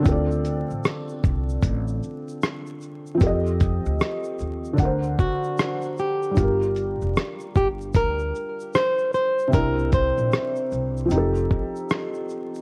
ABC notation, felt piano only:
X:1
M:4/4
L:1/8
Q:"Swing 16ths" 1/4=76
K:Dphr
V:1 name="Felt piano"
[D,CFAd]8 | [F,CGAe]4 [D,DBc^f]4 | [G,DFGB]8 | [C,CD=EB]4 [F,C_EGA]4 |]